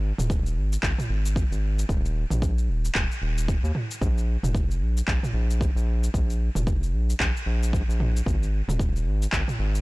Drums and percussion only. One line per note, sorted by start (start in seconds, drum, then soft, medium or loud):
0.18 mid tom medium
0.18 cabasa medium
0.30 kick loud
0.30 cabasa medium
0.46 cabasa soft
0.73 cabasa medium
0.83 kick loud
0.83 clap medium
0.83 cabasa medium
0.99 mid tom medium
0.99 cabasa soft
1.26 cabasa medium
1.36 kick loud
1.36 cabasa medium
1.52 cabasa soft
1.79 cabasa medium
1.89 kick loud
1.89 cabasa medium
2.05 cabasa soft
2.31 mid tom medium
2.31 cabasa medium
2.42 kick loud
2.42 cabasa medium
2.58 cabasa soft
2.85 cabasa medium
2.95 kick loud
2.95 clap medium
2.95 cabasa medium
3.12 cabasa soft
3.38 cabasa medium
3.48 kick loud
3.48 cabasa medium
3.65 cabasa soft
3.75 mid tom medium
3.91 cabasa medium
4.02 kick loud
4.02 cabasa medium
4.18 cabasa soft
4.43 mid tom medium
4.43 cabasa medium
4.55 kick loud
4.55 cabasa medium
4.71 cabasa soft
4.97 cabasa medium
5.08 kick loud
5.08 clap medium
5.08 cabasa medium
5.23 mid tom medium
5.23 cabasa soft
5.51 cabasa medium
5.61 kick loud
5.61 cabasa medium
5.77 cabasa soft
6.04 cabasa medium
6.14 kick medium
6.14 cabasa medium
6.30 cabasa soft
6.55 mid tom medium
6.55 cabasa medium
6.67 kick loud
6.67 cabasa medium
6.83 cabasa soft
7.10 cabasa medium
7.20 kick medium
7.20 clap medium
7.20 cabasa medium
7.37 cabasa soft
7.63 cabasa medium
7.73 kick loud
7.73 cabasa medium
7.90 cabasa soft
8.00 mid tom medium
8.17 cabasa medium
8.26 kick loud
8.26 cabasa medium
8.43 cabasa soft
8.69 mid tom medium
8.69 cabasa medium
8.80 kick loud
8.80 cabasa medium
8.96 cabasa soft
9.22 cabasa medium
9.32 kick medium
9.32 clap medium
9.32 cabasa soft
9.48 mid tom medium
9.48 cabasa soft
9.75 cabasa medium